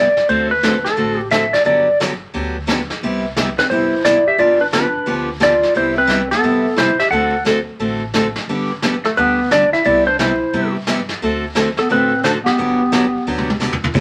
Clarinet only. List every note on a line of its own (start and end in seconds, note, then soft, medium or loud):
3.57 3.72 C4 medium
3.70 4.04 E4 medium
4.04 4.28 E4 medium
4.27 4.40 G4 medium
4.39 4.60 F4 medium
4.60 4.66 D4 medium
4.74 5.25 D4 medium
5.42 5.73 F4 medium
5.76 5.96 E4 medium
5.97 6.29 C4 medium
6.32 6.75 B3 medium
6.76 6.97 E4 medium
6.99 7.11 G4 medium
7.11 7.43 A4 medium
9.05 9.20 A3 medium
9.18 9.50 B3 medium
9.51 9.71 D4 medium
9.72 9.84 E4 medium
9.84 10.08 E4 medium
10.06 10.19 D4 medium
10.19 10.71 E4 medium
11.80 11.93 B3 medium
11.91 12.24 C4 medium
12.25 12.35 D4 loud
12.45 13.57 B3 medium